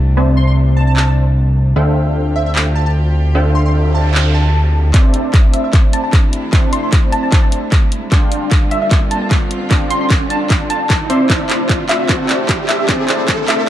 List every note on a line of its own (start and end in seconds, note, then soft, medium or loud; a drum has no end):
0.00 1.74 C2 medium
0.00 1.73 C3 medium
0.00 1.73 A3 medium
0.00 1.73 D4 medium
0.17 1.24 C4 medium
0.17 1.24 C5 medium
0.17 1.24 D5 medium
0.17 1.24 E5 medium
0.17 1.24 A5 medium
0.37 0.44 C6 medium
0.47 0.53 C6 medium
0.77 0.83 A5 medium
0.87 0.93 A5 medium
0.96 1.03 A5 medium
0.96 clap medium
1.07 1.13 A5 medium
1.76 4.92 D2 medium
1.76 4.91 D3 medium
1.76 4.91 C4 medium
1.76 2.83 D4 medium
1.76 4.91 F4 medium
1.76 4.91 G4 medium
1.76 2.83 A4 medium
1.76 2.83 C5 medium
1.76 2.83 E5 medium
1.76 2.83 F5 medium
1.76 2.83 G5 medium
2.36 2.42 E5 medium
2.46 2.52 E5 medium
2.56 clap medium
2.75 2.82 A5 medium
2.86 2.92 A5 medium
3.35 4.42 D4 medium
3.35 4.42 A4 medium
3.35 4.42 C5 medium
3.35 4.42 E5 medium
3.35 4.42 F5 medium
3.35 4.42 G5 medium
3.35 noise sweep medium
3.55 3.62 C6 medium
3.66 3.71 C6 medium
3.95 4.08 A5 medium
4.14 clap medium
4.34 4.90 A5 medium
4.94 8.09 C3 medium
4.94 8.09 A3 medium
4.94 6.01 C4 medium
4.94 8.09 D4 medium
4.94 8.09 E4 medium
4.94 6.01 C5 medium
4.94 6.01 D5 medium
4.94 6.01 E5 medium
4.94 6.01 A5 medium
4.94 kick medium
4.94 clap soft
4.94 closed hi-hat medium
4.94 riser medium
5.14 closed hi-hat medium
5.34 kick medium
5.34 clap soft
5.34 closed hi-hat medium
5.53 5.60 E5 medium
5.53 closed hi-hat medium
5.64 5.70 E5 medium
5.73 kick medium
5.73 clap soft
5.73 closed hi-hat medium
5.93 6.00 A5 medium
5.93 closed hi-hat medium
6.04 6.10 A5 medium
6.13 kick medium
6.13 clap soft
6.13 closed hi-hat medium
6.33 closed hi-hat medium
6.53 7.60 C4 medium
6.53 7.60 C5 medium
6.53 7.60 D5 medium
6.53 7.60 E5 medium
6.53 7.60 A5 medium
6.53 kick medium
6.53 clap medium
6.53 closed hi-hat medium
6.73 6.79 C6 medium
6.73 closed hi-hat medium
6.83 6.89 C6 medium
6.93 kick loud
6.93 clap medium
6.93 closed hi-hat medium
7.12 7.19 A5 medium
7.12 closed hi-hat medium
7.23 7.29 A5 medium
7.32 7.39 A5 medium
7.32 kick medium
7.32 clap medium
7.32 closed hi-hat medium
7.43 7.49 A5 medium
7.52 closed hi-hat medium
7.72 kick medium
7.72 clap medium
7.72 closed hi-hat medium
7.92 closed hi-hat medium
8.12 11.07 D3 medium
8.12 11.07 G3 medium
8.12 11.07 C4 medium
8.12 9.19 D4 medium
8.12 11.07 F4 medium
8.12 9.19 D5 medium
8.12 9.19 F5 medium
8.12 9.19 G5 medium
8.12 9.19 A5 medium
8.12 9.19 C6 medium
8.12 kick medium
8.12 clap medium
8.12 closed hi-hat medium
8.32 closed hi-hat medium
8.51 kick loud
8.51 clap medium
8.51 closed hi-hat medium
8.71 8.78 E5 medium
8.71 closed hi-hat medium
8.82 8.88 E5 medium
8.91 kick medium
8.91 clap medium
8.91 closed hi-hat medium
9.11 9.18 A5 medium
9.11 closed hi-hat medium
9.21 9.28 A5 medium
9.31 kick medium
9.31 clap medium
9.31 closed hi-hat medium
9.51 closed hi-hat medium
9.71 10.78 D4 medium
9.71 10.78 D5 medium
9.71 10.78 F5 medium
9.71 10.78 G5 medium
9.71 10.78 A5 medium
9.71 10.78 C6 medium
9.71 kick medium
9.71 clap medium
9.71 closed hi-hat medium
9.90 9.97 C6 medium
9.90 closed hi-hat medium
10.01 10.07 C6 medium
10.10 kick loud
10.10 clap medium
10.10 closed hi-hat medium
10.30 10.44 A5 medium
10.30 closed hi-hat medium
10.50 kick medium
10.50 clap medium
10.50 closed hi-hat medium
10.70 11.14 A5 medium
10.70 closed hi-hat medium
10.90 kick medium
10.90 clap medium
10.90 closed hi-hat medium
11.10 13.69 C3 medium
11.10 13.69 A3 medium
11.10 11.27 C4 medium
11.10 13.69 D4 medium
11.10 13.69 E4 medium
11.10 11.27 C5 medium
11.10 11.27 D5 medium
11.10 11.27 E5 medium
11.10 11.27 C6 medium
11.10 closed hi-hat medium
11.30 12.08 C4 medium
11.30 12.08 C5 medium
11.30 12.08 D5 medium
11.30 12.08 E5 medium
11.30 12.08 A5 medium
11.30 kick medium
11.30 clap medium
11.30 closed hi-hat medium
11.50 clap medium
11.50 closed hi-hat medium
11.69 kick loud
11.69 clap medium
11.69 closed hi-hat medium
11.89 11.96 E5 medium
11.89 clap medium
11.89 closed hi-hat medium
12.00 12.06 E5 medium
12.09 12.87 C4 medium
12.09 12.87 C5 medium
12.09 12.87 D5 medium
12.09 12.87 E5 medium
12.09 12.87 A5 medium
12.09 kick medium
12.09 clap medium
12.09 closed hi-hat medium
12.29 clap medium
12.29 closed hi-hat medium
12.49 kick medium
12.49 clap medium
12.49 closed hi-hat medium
12.69 12.75 E5 medium
12.69 clap medium
12.69 closed hi-hat medium
12.79 12.85 E5 medium
12.89 13.67 C4 medium
12.89 13.67 C5 medium
12.89 13.67 D5 medium
12.89 13.67 E5 medium
12.89 13.67 A5 medium
12.89 kick medium
12.89 clap medium
12.89 closed hi-hat medium
13.08 clap medium
13.08 closed hi-hat medium
13.28 kick loud
13.28 clap medium
13.28 closed hi-hat medium
13.48 13.55 E5 medium
13.48 clap medium
13.48 closed hi-hat medium
13.59 13.65 E5 medium